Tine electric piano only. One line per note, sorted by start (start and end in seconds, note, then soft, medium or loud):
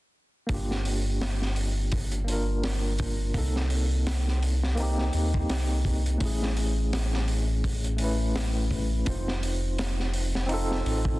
0.47 2.23 A#3 medium
0.47 2.24 D4 medium
0.52 2.26 F4 medium
0.52 2.27 G4 medium
2.24 3.30 A#3 medium
2.24 3.31 D4 medium
2.29 3.32 F4 medium
2.29 3.34 A#4 medium
3.34 3.55 A#3 medium
3.34 3.55 C4 medium
3.34 3.56 D#4 medium
3.34 3.57 A4 medium
4.75 6.16 A#3 medium
4.75 6.17 C4 medium
4.80 6.18 D#4 medium
4.80 6.20 G4 loud
6.18 7.94 A3 medium
6.18 7.96 C#4 medium
6.23 7.97 E4 medium
6.23 7.98 G#4 medium
7.97 9.02 A3 medium
7.97 9.03 C#4 medium
8.01 9.04 E4 medium
8.01 9.05 B4 medium
9.05 9.26 C4 medium
9.05 9.27 D#4 medium
9.05 9.28 F4 medium
9.09 9.28 C5 medium
10.46 11.20 C4 medium
10.46 11.20 D#4 medium
10.51 11.20 F4 medium
10.51 11.20 A4 loud